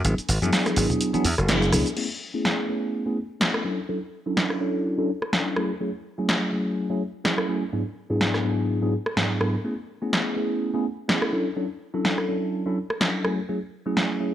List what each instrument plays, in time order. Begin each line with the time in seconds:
0.04 slap bass G#1, tine electric piano F#3 B3 D4 E4 G#4, closed hi-hat, maracas, shaker
0.18 closed hi-hat, shaker
0.29 slap bass G#1, open hi-hat, maracas, shaker
0.42 slap bass F#2, tine electric piano F#3 B3 D4 E4 G#4, closed hi-hat, high conga, maracas, shaker
0.53 snare, open hi-hat, maracas, shaker
0.66 cross-stick, snare, closed hi-hat, shaker
0.76 slap bass G#1, tine electric piano F#3 B3 D4 E4 G#4, open hi-hat, shaker
0.90 closed hi-hat, low conga, maracas, shaker
1.01 closed hi-hat, maracas, shaker
1.14 tine electric piano F#3 B3 D4 E4 G#4, muted slap bass stroke, closed hi-hat, high conga, shaker
1.25 slap bass E2, open hi-hat, shaker
1.38 slap bass F#1, cross-stick, closed hi-hat, maracas, shaker
1.48 tine electric piano F#3 B3 D4 E4 G#4, snare, closed hi-hat, high conga, shaker, maracas
1.62 closed hi-hat, shaker
1.72 slap bass C#2, tine electric piano F#3 B3 D4 E4 G#4, cross-stick, open hi-hat, high conga, low conga, maracas, shaker
1.86 closed hi-hat, shaker, maracas
1.96 tine electric piano A3 B3 C#4 E4 G#4, crash
2.34 tine electric piano A3 B3 C#4 E4 G#4
2.45 snare
2.68 tine electric piano A3 B3 C#4 E4 G#4
3.06 tine electric piano A3 B3 C#4 E4 G#4
3.40 tine electric piano A3 B3 C#4 E4 G#4, snare
3.54 cross-stick
3.64 tine electric piano F#3 C#4 D4 E4 A4
3.89 tine electric piano F#3 C#4 D4 E4 A4
4.26 tine electric piano F#3 C#4 D4 E4 A4
4.37 snare
4.50 cross-stick
4.60 tine electric piano F#3 C#4 D4 E4 A4
4.98 tine electric piano F#3 C#4 D4 E4 A4
5.22 cross-stick
5.32 tine electric piano F#3 C#4 D4 E4 A4, snare
5.56 tine electric piano F#3 A3 C#4 E4 G#4, cross-stick
5.80 tine electric piano F#3 A3 C#4 E4 G#4
6.18 tine electric piano F#3 A3 C#4 E4 G#4
6.29 snare
6.52 tine electric piano F#3 A3 C#4 E4 G#4
6.90 tine electric piano F#3 A3 C#4 E4 G#4
7.24 tine electric piano F#3 A3 C#4 E4 G#4, snare
7.38 cross-stick
7.48 tine electric piano F#3 A3 C#4 E4 G#4
7.72 tine electric piano G#2 F#3 B3 D4 E4 G#4
8.10 tine electric piano G#2 F#3 B3 D4 E4 G#4
8.21 snare
8.34 cross-stick, snare
8.44 tine electric piano G#2 F#3 B3 D4 E4 G#4
8.82 tine electric piano G#2 F#3 B3 D4 E4 G#4
9.06 cross-stick
9.16 tine electric piano G#2 F#3 B3 D4 E4 G#4, snare
9.40 tine electric piano G#2 F#3 B3 D4 E4 G#4, cross-stick
9.64 tine electric piano A3 B3 C#4 E4 G#4
10.02 tine electric piano A3 B3 C#4 E4 G#4
10.13 snare
10.36 tine electric piano A3 B3 C#4 E4 G#4
10.74 tine electric piano A3 B3 C#4 E4 G#4
11.08 tine electric piano A3 B3 C#4 E4 G#4, snare
11.22 cross-stick
11.32 tine electric piano F#3 C#4 D4 E4 A4
11.56 tine electric piano F#3 C#4 D4 E4 A4
11.94 tine electric piano F#3 C#4 D4 E4 A4
12.05 snare
12.18 cross-stick
12.28 tine electric piano F#3 C#4 D4 E4 A4
12.66 tine electric piano F#3 C#4 D4 E4 A4
12.90 cross-stick
13.00 tine electric piano F#3 C#4 D4 E4 A4, snare
13.24 tine electric piano F#3 A3 C#4 E4 G#4, cross-stick
13.48 tine electric piano F#3 A3 C#4 E4 G#4
13.86 tine electric piano F#3 A3 C#4 E4 G#4
13.97 snare
14.20 tine electric piano F#3 A3 C#4 E4 G#4